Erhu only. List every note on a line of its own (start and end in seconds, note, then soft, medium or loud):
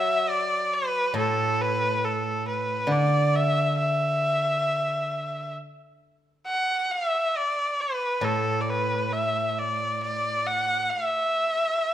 0.00 0.30 E5 medium
0.29 0.75 D5 medium
0.73 1.16 B4 medium
1.17 1.62 A4 medium
1.61 2.06 B4 medium
2.05 2.47 A4 medium
2.48 2.93 B4 medium
2.91 3.37 D5 medium
3.35 3.78 E5 medium
3.79 5.54 E5 medium
6.47 6.93 F#5 medium
6.91 7.38 E5 medium
7.37 7.82 D5 medium
7.81 8.26 B4 medium
8.24 8.62 A4 medium
8.61 8.71 D5 soft
8.69 9.15 B4 medium
9.13 9.49 E5 medium
9.49 9.60 E5 medium
9.58 10.02 D5 medium
10.03 10.48 D5 medium
10.46 10.91 F#5 medium
10.90 11.94 E5 medium